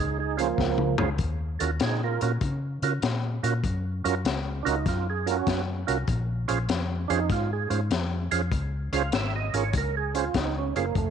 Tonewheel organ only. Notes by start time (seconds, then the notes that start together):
0.00 D#4 G#4
0.19 D#4 G#4
0.37 F3 A#3 C#4 F4 G#4 C5
0.99 C#4 F4 G#4 C5
1.59 C#4 F4 F#4 A4 A#4
1.83 D#4 G#4
2.03 F4 A#4
2.22 C#4 F4 F#4 A#4
2.83 C#4 F4 F#4 A#4
3.43 C#4 F4 F#4 A#4
4.04 C#4 F4 F#4 A#4
4.63 C#4 D4 F4 F#4 A#4
4.67 D#4
4.88 F4
5.10 G#4
5.26 C#4 F4 F#4 A#4
5.31 C#4 F#4
5.87 C#4 F4 F#4 A#4
6.48 C#4 F4 G#4 C5
7.08 C#4 D4 F4 G#4 C5
7.13 D#4
7.32 F4
7.53 G#4
7.70 C#4 F4 G#4 C5
8.31 C#4 F4 G#4 C5
8.93 C#4 F4 G#4 C5 F5
9.15 E5
9.36 D#5
9.54 C#4 F4 G#4 A#4 C#5
9.78 A#4
9.97 G#4
10.14 C#4 F4 G#4 C5
10.19 F4
10.39 D#4
10.58 C#4
10.76 A#3 C#4 F4 G#4 C5
10.98 A3